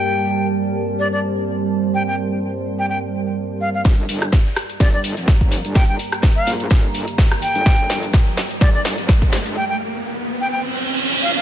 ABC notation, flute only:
X:1
M:4/4
L:1/16
Q:"Swing 16ths" 1/4=126
K:Gm
V:1 name="Flute"
g4 z4 d d z6 | g g z4 z g g z4 z f f | z8 d d z6 | g g z3 f z8 g2- |
g4 z4 d d z6 | g g z4 z g g z4 z f f |]